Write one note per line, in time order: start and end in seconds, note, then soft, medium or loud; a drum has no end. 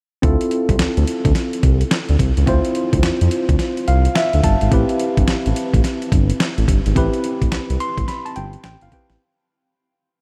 0.22 0.36 D2 loud
0.22 2.43 C4 medium
0.22 2.44 E4 medium
0.22 2.44 F4 medium
0.22 2.44 A4 medium
0.22 kick loud
0.22 closed hi-hat medium
0.41 closed hi-hat soft
0.51 closed hi-hat medium
0.69 0.76 C2 medium
0.69 kick medium
0.69 closed hi-hat medium
0.79 0.87 D2 soft
0.79 snare medium
0.79 clap medium
0.79 closed hi-hat medium
0.97 1.04 D2 medium
0.97 closed hi-hat medium
1.07 closed hi-hat medium
1.25 1.32 D2 loud
1.25 kick medium
1.25 closed hi-hat medium
1.35 snare medium
1.35 closed hi-hat medium
1.53 closed hi-hat soft
1.63 1.83 C2 medium
1.63 kick medium
1.63 closed hi-hat medium
1.81 closed hi-hat soft
1.91 snare loud
1.91 clap loud
1.91 closed hi-hat medium
2.09 2.17 D2 medium
2.09 closed hi-hat soft
2.19 2.32 C2 medium
2.19 kick medium
2.19 closed hi-hat medium
2.37 2.45 C#2 medium
2.37 closed hi-hat soft
2.46 2.60 D2 loud
2.46 4.67 C4 medium
2.46 4.67 E4 medium
2.46 4.68 F4 medium
2.46 4.68 C5 medium
2.46 kick loud
2.46 closed hi-hat medium
2.65 closed hi-hat soft
2.75 closed hi-hat medium
2.93 3.01 D2 medium
2.93 kick medium
2.93 closed hi-hat medium
3.03 3.11 F2 soft
3.03 snare loud
3.03 clap medium
3.03 closed hi-hat medium
3.21 3.29 F2 loud
3.21 closed hi-hat medium
3.31 closed hi-hat medium
3.49 3.57 D2 loud
3.49 kick medium
3.49 closed hi-hat medium
3.59 snare medium
3.59 closed hi-hat medium
3.77 closed hi-hat soft
3.88 4.08 C2 loud
3.88 4.14 F5 medium
3.88 closed hi-hat medium
4.05 closed hi-hat soft
4.16 4.42 E5 medium
4.16 snare loud
4.16 clap medium
4.16 closed hi-hat medium
4.33 4.41 D2 medium
4.33 closed hi-hat medium
4.44 4.56 G1 medium
4.44 4.70 A5 medium
4.44 kick medium
4.44 closed hi-hat medium
4.61 4.69 G#1 medium
4.61 closed hi-hat soft
4.71 4.84 A1 loud
4.71 6.92 C4 medium
4.71 6.92 E4 medium
4.71 6.93 G4 medium
4.71 6.93 B4 medium
4.71 kick loud
4.71 closed hi-hat medium
4.89 closed hi-hat soft
5.00 closed hi-hat medium
5.17 5.25 G1 medium
5.17 kick medium
5.17 closed hi-hat medium
5.28 5.35 A1 soft
5.28 snare loud
5.28 clap medium
5.28 closed hi-hat medium
5.46 5.53 A1 medium
5.46 closed hi-hat medium
5.56 closed hi-hat medium
5.74 5.81 A1 medium
5.74 kick medium
5.74 closed hi-hat medium
5.84 snare medium
5.84 closed hi-hat medium
6.02 closed hi-hat soft
6.12 6.32 G1 medium
6.12 kick medium
6.12 closed hi-hat medium
6.30 closed hi-hat soft
6.40 snare loud
6.40 clap medium
6.40 closed hi-hat medium
6.58 6.65 A1 medium
6.58 closed hi-hat soft
6.68 6.81 G1 medium
6.68 kick medium
6.68 closed hi-hat medium
6.86 6.93 G#1 medium
6.86 closed hi-hat medium
6.95 7.09 A1 loud
6.95 8.88 C4 medium
6.95 8.89 E4 medium
6.95 8.89 G4 medium
6.95 8.89 B4 medium
6.95 kick loud
6.95 closed hi-hat medium
7.13 closed hi-hat soft
7.24 closed hi-hat medium
7.42 7.49 A1 medium
7.42 kick medium
7.42 closed hi-hat medium
7.52 7.59 C2 soft
7.52 snare medium
7.52 clap medium
7.52 closed hi-hat medium
7.70 7.77 C2 medium
7.70 closed hi-hat medium
7.80 8.06 C6 medium
7.80 closed hi-hat medium
7.98 8.05 A1 loud
7.98 kick medium
7.98 closed hi-hat medium
8.08 8.25 B5 medium
8.08 snare soft
8.08 closed hi-hat medium
8.26 8.35 A5 medium
8.26 closed hi-hat soft
8.36 8.56 G1 medium
8.36 8.62 G5 medium
8.36 closed hi-hat medium
8.53 closed hi-hat soft
8.64 8.77 A1 medium
8.64 8.81 G5 medium
8.64 snare loud
8.64 clap medium
8.64 closed hi-hat medium
8.81 8.89 G1 medium
8.81 8.92 F5 medium
8.81 closed hi-hat medium
8.92 9.20 C4 medium
8.92 9.21 E4 soft
8.92 9.21 G4 medium
8.92 9.21 B4 medium
8.92 9.19 G5 medium
8.92 kick medium
8.92 closed hi-hat medium
9.10 9.17 A1 medium
9.10 snare medium
9.10 closed hi-hat soft